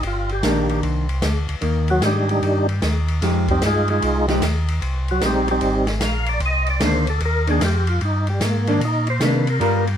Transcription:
0.03 tonewheel organ G1, ride
0.07 tonewheel organ F4
0.29 tonewheel organ G4, ride
0.43 tonewheel organ A#1, hollow-body jazz guitar D#3 A#3 D4, snare, hi-hat pedal, ride
0.69 ride
0.83 tonewheel organ C2, ride
1.09 ride
1.22 tonewheel organ D2, snare, hi-hat pedal, ride
1.49 tonewheel organ D2, ride
1.61 tonewheel organ D#2, hollow-body jazz guitar D#3 A#3, ride
1.88 tonewheel organ F#3 F#4, ride
2.01 tonewheel organ G#2 G4, snare, hi-hat pedal, ride
2.05 tonewheel organ G3 D4 D#4
2.29 tonewheel organ G3 D4 D#4 G4, ride
2.42 tonewheel organ G2, ride
2.69 ride
2.82 tonewheel organ D#2, snare, hi-hat pedal, ride
3.08 ride
3.21 tonewheel organ F2, hollow-body jazz guitar F3 G#3 D#4 G4, snare, ride
3.48 tonewheel organ G3 C4 D#4 G4, kick, ride
3.61 tonewheel organ G2, snare, hi-hat pedal, ride
3.66 tonewheel organ G#3 D#4 F4 G#4
3.88 tonewheel organ G#3 D#4 F4 G#4, ride
4.02 tonewheel organ C2, ride
4.28 hollow-body jazz guitar F3 G#3 D#4 G4, snare, ride
4.42 tonewheel organ D#2, snare, hi-hat pedal, ride
4.68 ride
4.82 tonewheel organ C2, ride
5.08 tonewheel organ F#3 F#4, ride
5.21 tonewheel organ A#1 G4, snare, hi-hat pedal, ride
5.26 tonewheel organ G3 C4 D#4
5.48 tonewheel organ G3 C4 D#4 G4, ride
5.61 tonewheel organ G#1, ride
5.87 snare, ride
6.00 tonewheel organ A#1, snare, hi-hat pedal, ride
6.05 tonewheel organ F5
6.26 tonewheel organ D5, ride
6.40 tonewheel organ C2, ride
6.46 tonewheel organ D#5
6.66 tonewheel organ D5, ride
6.80 tonewheel organ D2, hollow-body jazz guitar D#3 A#3 D4, snare, hi-hat pedal, ride
6.85 tonewheel organ C5
7.07 tonewheel organ A4, ride
7.20 tonewheel organ D#2, ride
7.25 tonewheel organ A#4
7.47 hollow-body jazz guitar D#3 A#3 D4, tonewheel organ G#4, ride
7.61 tonewheel organ F2 G4, snare, hi-hat pedal, ride
7.87 tonewheel organ F4, ride
8.01 tonewheel organ G2 D#4, ride
8.27 tonewheel organ G3, ride
8.41 tonewheel organ G#2 A#3, snare, hi-hat pedal, ride
8.67 hollow-body jazz guitar D#3 A#3 D4, tonewheel organ D4, ride
8.81 tonewheel organ A#2, ride
8.85 tonewheel organ D#4
9.07 tonewheel organ C5, ride
9.20 tonewheel organ C3, hollow-body jazz guitar D#3 A#3 D4, snare, hi-hat pedal, ride
9.25 tonewheel organ B4
9.47 tonewheel organ A#4, ride
9.60 tonewheel organ G2, hollow-body jazz guitar G3 B3 F4 A#4, ride
9.87 ride

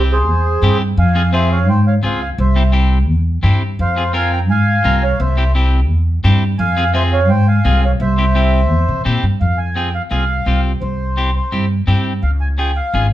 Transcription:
Already playing: upright bass C2, clean electric guitar C4 E4 G4
0.12 accordion G#4 C5
0.27 upright bass E2
0.62 upright bass G2, clean electric guitar C4 E4 G4
0.97 upright bass F2, accordion F5 G#5
1.15 clean electric guitar C4 F4 G#4
1.33 clean electric guitar C4 F4 G#4, accordion C5 E5
1.51 accordion C#5 F5
1.68 upright bass G#2, accordion C5 G5
1.87 accordion C#5 F5
2.03 upright bass C#2, clean electric guitar C4 F4 G#4, accordion C5 F5
2.22 accordion F5 G#5
2.38 upright bass C2, accordion C5 E5
2.56 clean electric guitar C4 E4 G4
2.72 clean electric guitar C4 E4 G4
3.09 upright bass E2
3.43 upright bass G2, clean electric guitar C4 E4 G4
3.79 upright bass F2, accordion C5 F5
3.96 clean electric guitar C4 F4 G#4
4.13 clean electric guitar C4 F4 A#4, accordion F5 G#5
4.33 accordion G5 A#5
4.49 upright bass G#2, accordion F5 G#5
4.84 upright bass C2, clean electric guitar C4 F4 A#4
5.03 accordion C#5 F5
5.19 upright bass C2, accordion C5 E5
5.37 clean electric guitar C4 E4 G4
5.55 clean electric guitar C4 E4 G4
5.89 upright bass E2
6.24 upright bass G2, clean electric guitar C4 E4 G4
6.58 upright bass F2, accordion F5 G#5
6.77 clean electric guitar C4 F4 G#4
6.94 clean electric guitar C4 F4 G#4, accordion C5 E5
7.12 accordion C#5 F5
7.29 upright bass G#2, accordion C5 G5
7.47 accordion F5 G#5
7.65 upright bass C2, clean electric guitar C4 F4 G#4
7.84 accordion C#5 F5
8.00 upright bass C2, accordion C5 E5
8.18 clean electric guitar C4 E4 G4
8.35 clean electric guitar C4 E4 G4
8.71 upright bass E2
8.88 upright bass C3
9.05 upright bass A#2, clean electric guitar C4 E4 G4
9.23 upright bass G2
9.41 upright bass F2, accordion F5
9.58 accordion G#5
9.76 clean electric guitar C4 F4 G#4, accordion G5
9.95 accordion F5
10.11 upright bass C2, clean electric guitar C4 F4 G#4, accordion F5
10.46 upright bass C2, clean electric guitar C4 F4 G4
10.81 upright bass C2, accordion C5
11.17 clean electric guitar C4 E4 G4
11.36 accordion C5
11.52 upright bass G2, clean electric guitar C4 E4 G4
11.87 upright bass G2, clean electric guitar C4 E4 G4
12.23 upright bass C#2, accordion F5
12.41 accordion G#5
12.58 clean electric guitar C#4 F4 G#4, accordion G5
12.76 accordion F5
12.93 upright bass G#1, clean electric guitar C#4 F4 G#4

